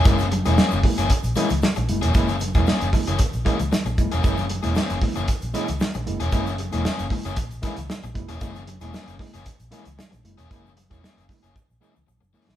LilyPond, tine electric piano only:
\new Staff \with { instrumentName = "Tine electric piano" } { \time 4/4 \key fis \mixolydian \tempo 4 = 115 << { <gis ais e'>16 r8 <gis ais e'>16 r8 <gis ais e'>16 <ais e'>16 r8 <gis ais e'>16 r8. <gis ais e'>16 <ais e'>16 | <gis ais e'>16 r8 <gis ais e'>16 r8 <gis ais e'>16 <ais e'>16 r8 <gis ais e'>16 r8. <gis ais e'>16 <ais e'>16 | <gis ais e'>16 r8 <gis ais e'>16 r8 <gis ais e'>16 <ais e'>16 r8 <gis ais e'>16 r8. <gis ais e'>16 <ais e'>16 | <gis ais e'>16 r8 <gis ais e'>16 r8 <gis ais e'>16 <ais e'>16 r8 <gis ais e'>16 r8. <gis ais e'>16 <ais e'>16 |
<gis ais e'>16 r8 <gis ais e'>16 r8 <gis ais e'>16 <ais e'>16 r8 <gis ais e'>16 r8. <gis ais e'>16 <ais e'>16 | <gis ais e'>16 r8 <gis ais e'>16 r8 <gis ais e'>16 <ais e'>16 r8 <gis ais e'>16 r8. <gis ais e'>16 <ais e'>16 | } \\ { r8 fis8 fis8 r4. fis8 r8 | r8 fis8 fis8 r4. fis8 r8 | r8 fis8 fis8 r4. fis8 r8 | r8 fis8 fis8 r4. fis8 r8 |
r8 fis8 fis8 r4. fis8 r8 | r8 fis8 fis8 r4. fis8 r8 | } >> }